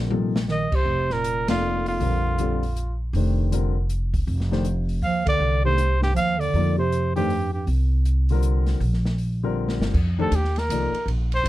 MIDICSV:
0, 0, Header, 1, 7, 480
1, 0, Start_track
1, 0, Tempo, 377834
1, 1099, Time_signature, 3, 2, 24, 8
1, 14592, End_track
2, 0, Start_track
2, 0, Title_t, "Trumpet"
2, 0, Program_c, 0, 56
2, 646, Note_on_c, 0, 75, 87
2, 956, Note_on_c, 0, 72, 89
2, 975, Note_off_c, 0, 75, 0
2, 1429, Note_on_c, 0, 70, 97
2, 1448, Note_off_c, 0, 72, 0
2, 1895, Note_off_c, 0, 70, 0
2, 1901, Note_on_c, 0, 65, 89
2, 2339, Note_off_c, 0, 65, 0
2, 2392, Note_on_c, 0, 65, 85
2, 3767, Note_off_c, 0, 65, 0
2, 6392, Note_on_c, 0, 77, 86
2, 6669, Note_off_c, 0, 77, 0
2, 6712, Note_on_c, 0, 74, 93
2, 7146, Note_off_c, 0, 74, 0
2, 7181, Note_on_c, 0, 72, 90
2, 7620, Note_off_c, 0, 72, 0
2, 7664, Note_on_c, 0, 67, 81
2, 7821, Note_off_c, 0, 67, 0
2, 7830, Note_on_c, 0, 77, 99
2, 8132, Note_on_c, 0, 74, 86
2, 8151, Note_off_c, 0, 77, 0
2, 8609, Note_off_c, 0, 74, 0
2, 8628, Note_on_c, 0, 72, 83
2, 9064, Note_off_c, 0, 72, 0
2, 9095, Note_on_c, 0, 67, 87
2, 9538, Note_off_c, 0, 67, 0
2, 9574, Note_on_c, 0, 67, 61
2, 9736, Note_off_c, 0, 67, 0
2, 12966, Note_on_c, 0, 69, 85
2, 13153, Note_on_c, 0, 67, 77
2, 13172, Note_off_c, 0, 69, 0
2, 13448, Note_on_c, 0, 70, 88
2, 13467, Note_off_c, 0, 67, 0
2, 14084, Note_off_c, 0, 70, 0
2, 14417, Note_on_c, 0, 72, 97
2, 14592, Note_off_c, 0, 72, 0
2, 14592, End_track
3, 0, Start_track
3, 0, Title_t, "Grand piano"
3, 0, Program_c, 1, 0
3, 0, Note_on_c, 1, 50, 48
3, 0, Note_on_c, 1, 55, 46
3, 0, Note_on_c, 1, 60, 48
3, 0, Note_on_c, 1, 65, 40
3, 0, Note_on_c, 1, 70, 48
3, 128, Note_off_c, 1, 50, 0
3, 129, Note_off_c, 1, 55, 0
3, 131, Note_off_c, 1, 60, 0
3, 133, Note_off_c, 1, 65, 0
3, 137, Note_off_c, 1, 70, 0
3, 137, Note_on_c, 1, 48, 55
3, 137, Note_on_c, 1, 53, 52
3, 143, Note_on_c, 1, 58, 50
3, 150, Note_on_c, 1, 63, 53
3, 152, Note_on_c, 1, 69, 60
3, 410, Note_off_c, 1, 48, 0
3, 410, Note_off_c, 1, 53, 0
3, 413, Note_off_c, 1, 58, 0
3, 416, Note_off_c, 1, 63, 0
3, 417, Note_off_c, 1, 69, 0
3, 1881, Note_on_c, 1, 53, 63
3, 1887, Note_on_c, 1, 58, 54
3, 1892, Note_on_c, 1, 63, 57
3, 1898, Note_on_c, 1, 69, 61
3, 1903, Note_on_c, 1, 74, 67
3, 2503, Note_off_c, 1, 53, 0
3, 2506, Note_off_c, 1, 58, 0
3, 2509, Note_off_c, 1, 63, 0
3, 2512, Note_off_c, 1, 69, 0
3, 2515, Note_off_c, 1, 74, 0
3, 2546, Note_on_c, 1, 50, 52
3, 2554, Note_on_c, 1, 55, 48
3, 2560, Note_on_c, 1, 60, 42
3, 2565, Note_on_c, 1, 70, 54
3, 2566, Note_on_c, 1, 65, 42
3, 3005, Note_off_c, 1, 50, 0
3, 3009, Note_off_c, 1, 55, 0
3, 3012, Note_off_c, 1, 60, 0
3, 3015, Note_off_c, 1, 65, 0
3, 3015, Note_off_c, 1, 70, 0
3, 3036, Note_on_c, 1, 50, 53
3, 3042, Note_on_c, 1, 60, 52
3, 3047, Note_on_c, 1, 55, 50
3, 3051, Note_on_c, 1, 65, 48
3, 3052, Note_on_c, 1, 69, 62
3, 3300, Note_off_c, 1, 50, 0
3, 3304, Note_off_c, 1, 60, 0
3, 3306, Note_off_c, 1, 55, 0
3, 3308, Note_off_c, 1, 65, 0
3, 3308, Note_off_c, 1, 69, 0
3, 4008, Note_on_c, 1, 51, 54
3, 4009, Note_on_c, 1, 57, 50
3, 4013, Note_on_c, 1, 62, 48
3, 4017, Note_on_c, 1, 67, 46
3, 4022, Note_on_c, 1, 72, 55
3, 4457, Note_off_c, 1, 51, 0
3, 4457, Note_off_c, 1, 57, 0
3, 4459, Note_off_c, 1, 62, 0
3, 4462, Note_off_c, 1, 67, 0
3, 4464, Note_off_c, 1, 72, 0
3, 4472, Note_on_c, 1, 50, 59
3, 4474, Note_on_c, 1, 55, 51
3, 4483, Note_on_c, 1, 65, 52
3, 4485, Note_on_c, 1, 60, 54
3, 4489, Note_on_c, 1, 70, 59
3, 4739, Note_off_c, 1, 50, 0
3, 4740, Note_off_c, 1, 55, 0
3, 4745, Note_off_c, 1, 60, 0
3, 4745, Note_off_c, 1, 65, 0
3, 4747, Note_off_c, 1, 70, 0
3, 5737, Note_on_c, 1, 51, 60
3, 5742, Note_on_c, 1, 62, 53
3, 5745, Note_on_c, 1, 57, 53
3, 5747, Note_on_c, 1, 67, 56
3, 5755, Note_on_c, 1, 72, 70
3, 5891, Note_off_c, 1, 51, 0
3, 5893, Note_off_c, 1, 62, 0
3, 5894, Note_off_c, 1, 57, 0
3, 5896, Note_off_c, 1, 67, 0
3, 5900, Note_off_c, 1, 72, 0
3, 7179, Note_on_c, 1, 51, 52
3, 7184, Note_on_c, 1, 62, 50
3, 7190, Note_on_c, 1, 57, 46
3, 7195, Note_on_c, 1, 67, 51
3, 7200, Note_on_c, 1, 72, 57
3, 7332, Note_off_c, 1, 51, 0
3, 7334, Note_off_c, 1, 62, 0
3, 7338, Note_off_c, 1, 57, 0
3, 7340, Note_off_c, 1, 67, 0
3, 7343, Note_off_c, 1, 72, 0
3, 8323, Note_on_c, 1, 53, 53
3, 8324, Note_on_c, 1, 58, 48
3, 8329, Note_on_c, 1, 63, 51
3, 8331, Note_on_c, 1, 69, 50
3, 8335, Note_on_c, 1, 74, 60
3, 8585, Note_off_c, 1, 53, 0
3, 8586, Note_off_c, 1, 58, 0
3, 8589, Note_off_c, 1, 63, 0
3, 8590, Note_off_c, 1, 69, 0
3, 8592, Note_off_c, 1, 74, 0
3, 9098, Note_on_c, 1, 51, 66
3, 9104, Note_on_c, 1, 57, 56
3, 9107, Note_on_c, 1, 62, 59
3, 9111, Note_on_c, 1, 67, 60
3, 9118, Note_on_c, 1, 72, 69
3, 9252, Note_off_c, 1, 51, 0
3, 9255, Note_off_c, 1, 57, 0
3, 9257, Note_off_c, 1, 62, 0
3, 9259, Note_off_c, 1, 67, 0
3, 9262, Note_off_c, 1, 72, 0
3, 10551, Note_on_c, 1, 50, 61
3, 10551, Note_on_c, 1, 55, 53
3, 10563, Note_on_c, 1, 65, 52
3, 10566, Note_on_c, 1, 60, 53
3, 10571, Note_on_c, 1, 70, 68
3, 11161, Note_off_c, 1, 50, 0
3, 11161, Note_off_c, 1, 55, 0
3, 11167, Note_off_c, 1, 65, 0
3, 11169, Note_off_c, 1, 60, 0
3, 11171, Note_off_c, 1, 70, 0
3, 11985, Note_on_c, 1, 50, 60
3, 11986, Note_on_c, 1, 55, 59
3, 11988, Note_on_c, 1, 60, 61
3, 11994, Note_on_c, 1, 65, 58
3, 11999, Note_on_c, 1, 70, 70
3, 12598, Note_off_c, 1, 50, 0
3, 12599, Note_off_c, 1, 55, 0
3, 12599, Note_off_c, 1, 60, 0
3, 12602, Note_off_c, 1, 65, 0
3, 12605, Note_off_c, 1, 70, 0
3, 12939, Note_on_c, 1, 51, 68
3, 12948, Note_on_c, 1, 57, 54
3, 12948, Note_on_c, 1, 62, 67
3, 12954, Note_on_c, 1, 72, 66
3, 12955, Note_on_c, 1, 67, 61
3, 13092, Note_off_c, 1, 51, 0
3, 13097, Note_off_c, 1, 57, 0
3, 13097, Note_off_c, 1, 62, 0
3, 13100, Note_off_c, 1, 72, 0
3, 13101, Note_off_c, 1, 67, 0
3, 13604, Note_on_c, 1, 53, 55
3, 13604, Note_on_c, 1, 58, 47
3, 13611, Note_on_c, 1, 63, 51
3, 13617, Note_on_c, 1, 69, 52
3, 13618, Note_on_c, 1, 74, 55
3, 13866, Note_off_c, 1, 53, 0
3, 13866, Note_off_c, 1, 58, 0
3, 13870, Note_off_c, 1, 63, 0
3, 13872, Note_off_c, 1, 69, 0
3, 13873, Note_off_c, 1, 74, 0
3, 14592, End_track
4, 0, Start_track
4, 0, Title_t, "Bass clarinet"
4, 0, Program_c, 2, 71
4, 616, Note_on_c, 2, 51, 78
4, 917, Note_on_c, 2, 48, 80
4, 936, Note_off_c, 2, 51, 0
4, 1415, Note_on_c, 2, 46, 76
4, 1434, Note_off_c, 2, 48, 0
4, 1880, Note_off_c, 2, 46, 0
4, 1887, Note_on_c, 2, 41, 75
4, 2331, Note_off_c, 2, 41, 0
4, 2375, Note_on_c, 2, 41, 72
4, 3759, Note_off_c, 2, 41, 0
4, 6381, Note_on_c, 2, 53, 80
4, 6663, Note_off_c, 2, 53, 0
4, 6680, Note_on_c, 2, 50, 77
4, 7129, Note_off_c, 2, 50, 0
4, 7160, Note_on_c, 2, 48, 71
4, 7609, Note_off_c, 2, 48, 0
4, 7625, Note_on_c, 2, 43, 64
4, 7792, Note_off_c, 2, 43, 0
4, 7800, Note_on_c, 2, 53, 80
4, 8105, Note_on_c, 2, 50, 80
4, 8124, Note_off_c, 2, 53, 0
4, 8586, Note_off_c, 2, 50, 0
4, 8593, Note_on_c, 2, 48, 75
4, 9046, Note_off_c, 2, 48, 0
4, 9087, Note_on_c, 2, 43, 76
4, 9534, Note_off_c, 2, 43, 0
4, 9557, Note_on_c, 2, 43, 57
4, 9726, Note_off_c, 2, 43, 0
4, 14592, End_track
5, 0, Start_track
5, 0, Title_t, "Upright bass"
5, 0, Program_c, 3, 32
5, 0, Note_on_c, 3, 34, 82
5, 865, Note_off_c, 3, 34, 0
5, 913, Note_on_c, 3, 36, 62
5, 1074, Note_off_c, 3, 36, 0
5, 1082, Note_on_c, 3, 29, 81
5, 2480, Note_off_c, 3, 29, 0
5, 2541, Note_on_c, 3, 34, 78
5, 3930, Note_off_c, 3, 34, 0
5, 3980, Note_on_c, 3, 29, 87
5, 5371, Note_off_c, 3, 29, 0
5, 5428, Note_on_c, 3, 29, 83
5, 6335, Note_off_c, 3, 29, 0
5, 6374, Note_on_c, 3, 39, 74
5, 6825, Note_off_c, 3, 39, 0
5, 6859, Note_on_c, 3, 36, 79
5, 7770, Note_off_c, 3, 36, 0
5, 7828, Note_on_c, 3, 39, 75
5, 8272, Note_off_c, 3, 39, 0
5, 8302, Note_on_c, 3, 41, 80
5, 9693, Note_off_c, 3, 41, 0
5, 9743, Note_on_c, 3, 36, 80
5, 11133, Note_off_c, 3, 36, 0
5, 11183, Note_on_c, 3, 34, 88
5, 12396, Note_off_c, 3, 34, 0
5, 12442, Note_on_c, 3, 31, 55
5, 12609, Note_off_c, 3, 31, 0
5, 12624, Note_on_c, 3, 41, 79
5, 13090, Note_off_c, 3, 41, 0
5, 13102, Note_on_c, 3, 39, 91
5, 13568, Note_off_c, 3, 39, 0
5, 13584, Note_on_c, 3, 36, 81
5, 13865, Note_off_c, 3, 36, 0
5, 14047, Note_on_c, 3, 34, 80
5, 14520, Note_off_c, 3, 34, 0
5, 14528, Note_on_c, 3, 33, 94
5, 14592, Note_off_c, 3, 33, 0
5, 14592, End_track
6, 0, Start_track
6, 0, Title_t, "Muted upright bass strokes"
6, 13878, Note_on_c, 9, 29, 36
6, 14005, Note_off_c, 9, 29, 0
6, 14592, End_track
7, 0, Start_track
7, 0, Title_t, "Drums"
7, 134, Note_on_c, 9, 48, 59
7, 261, Note_off_c, 9, 48, 0
7, 454, Note_on_c, 9, 38, 86
7, 581, Note_off_c, 9, 38, 0
7, 614, Note_on_c, 9, 38, 47
7, 741, Note_off_c, 9, 38, 0
7, 916, Note_on_c, 9, 36, 75
7, 916, Note_on_c, 9, 49, 65
7, 1043, Note_off_c, 9, 36, 0
7, 1043, Note_off_c, 9, 49, 0
7, 1398, Note_on_c, 9, 38, 34
7, 1525, Note_off_c, 9, 38, 0
7, 1579, Note_on_c, 9, 42, 54
7, 1706, Note_off_c, 9, 42, 0
7, 1883, Note_on_c, 9, 51, 68
7, 1885, Note_on_c, 9, 38, 77
7, 2010, Note_off_c, 9, 51, 0
7, 2012, Note_off_c, 9, 38, 0
7, 2364, Note_on_c, 9, 46, 38
7, 2491, Note_off_c, 9, 46, 0
7, 2547, Note_on_c, 9, 46, 43
7, 2674, Note_off_c, 9, 46, 0
7, 3029, Note_on_c, 9, 42, 49
7, 3156, Note_off_c, 9, 42, 0
7, 3342, Note_on_c, 9, 46, 39
7, 3469, Note_off_c, 9, 46, 0
7, 3511, Note_on_c, 9, 42, 49
7, 3638, Note_off_c, 9, 42, 0
7, 3997, Note_on_c, 9, 46, 44
7, 4124, Note_off_c, 9, 46, 0
7, 4477, Note_on_c, 9, 42, 53
7, 4604, Note_off_c, 9, 42, 0
7, 4949, Note_on_c, 9, 42, 48
7, 5076, Note_off_c, 9, 42, 0
7, 5255, Note_on_c, 9, 36, 63
7, 5257, Note_on_c, 9, 46, 39
7, 5382, Note_off_c, 9, 36, 0
7, 5384, Note_off_c, 9, 46, 0
7, 5432, Note_on_c, 9, 46, 40
7, 5559, Note_off_c, 9, 46, 0
7, 5596, Note_on_c, 9, 38, 30
7, 5724, Note_off_c, 9, 38, 0
7, 5747, Note_on_c, 9, 38, 42
7, 5874, Note_off_c, 9, 38, 0
7, 5902, Note_on_c, 9, 42, 51
7, 6029, Note_off_c, 9, 42, 0
7, 6210, Note_on_c, 9, 46, 35
7, 6337, Note_off_c, 9, 46, 0
7, 6384, Note_on_c, 9, 46, 40
7, 6511, Note_off_c, 9, 46, 0
7, 6690, Note_on_c, 9, 51, 66
7, 6692, Note_on_c, 9, 36, 89
7, 6817, Note_off_c, 9, 51, 0
7, 6819, Note_off_c, 9, 36, 0
7, 7343, Note_on_c, 9, 42, 50
7, 7470, Note_off_c, 9, 42, 0
7, 7653, Note_on_c, 9, 38, 48
7, 7780, Note_off_c, 9, 38, 0
7, 7831, Note_on_c, 9, 42, 48
7, 7958, Note_off_c, 9, 42, 0
7, 8140, Note_on_c, 9, 46, 37
7, 8267, Note_off_c, 9, 46, 0
7, 8312, Note_on_c, 9, 46, 35
7, 8439, Note_off_c, 9, 46, 0
7, 8795, Note_on_c, 9, 42, 48
7, 8922, Note_off_c, 9, 42, 0
7, 9101, Note_on_c, 9, 46, 41
7, 9228, Note_off_c, 9, 46, 0
7, 9275, Note_on_c, 9, 46, 43
7, 9402, Note_off_c, 9, 46, 0
7, 9747, Note_on_c, 9, 46, 39
7, 9874, Note_off_c, 9, 46, 0
7, 10232, Note_on_c, 9, 42, 54
7, 10359, Note_off_c, 9, 42, 0
7, 10531, Note_on_c, 9, 46, 39
7, 10658, Note_off_c, 9, 46, 0
7, 10704, Note_on_c, 9, 42, 53
7, 10831, Note_off_c, 9, 42, 0
7, 11007, Note_on_c, 9, 46, 36
7, 11010, Note_on_c, 9, 38, 37
7, 11134, Note_off_c, 9, 46, 0
7, 11137, Note_off_c, 9, 38, 0
7, 11192, Note_on_c, 9, 46, 41
7, 11319, Note_off_c, 9, 46, 0
7, 11351, Note_on_c, 9, 38, 26
7, 11478, Note_off_c, 9, 38, 0
7, 11503, Note_on_c, 9, 38, 44
7, 11630, Note_off_c, 9, 38, 0
7, 11664, Note_on_c, 9, 46, 42
7, 11791, Note_off_c, 9, 46, 0
7, 12306, Note_on_c, 9, 38, 56
7, 12433, Note_off_c, 9, 38, 0
7, 12470, Note_on_c, 9, 38, 72
7, 12597, Note_off_c, 9, 38, 0
7, 12627, Note_on_c, 9, 36, 67
7, 12631, Note_on_c, 9, 49, 69
7, 12754, Note_off_c, 9, 36, 0
7, 12758, Note_off_c, 9, 49, 0
7, 13106, Note_on_c, 9, 44, 49
7, 13106, Note_on_c, 9, 51, 64
7, 13233, Note_off_c, 9, 44, 0
7, 13233, Note_off_c, 9, 51, 0
7, 13268, Note_on_c, 9, 38, 27
7, 13395, Note_off_c, 9, 38, 0
7, 13414, Note_on_c, 9, 51, 45
7, 13437, Note_on_c, 9, 38, 44
7, 13541, Note_off_c, 9, 51, 0
7, 13564, Note_off_c, 9, 38, 0
7, 13595, Note_on_c, 9, 44, 57
7, 13595, Note_on_c, 9, 51, 67
7, 13722, Note_off_c, 9, 44, 0
7, 13722, Note_off_c, 9, 51, 0
7, 13904, Note_on_c, 9, 51, 47
7, 14031, Note_off_c, 9, 51, 0
7, 14077, Note_on_c, 9, 51, 56
7, 14204, Note_off_c, 9, 51, 0
7, 14379, Note_on_c, 9, 51, 47
7, 14506, Note_off_c, 9, 51, 0
7, 14552, Note_on_c, 9, 44, 51
7, 14552, Note_on_c, 9, 51, 73
7, 14592, Note_off_c, 9, 44, 0
7, 14592, Note_off_c, 9, 51, 0
7, 14592, End_track
0, 0, End_of_file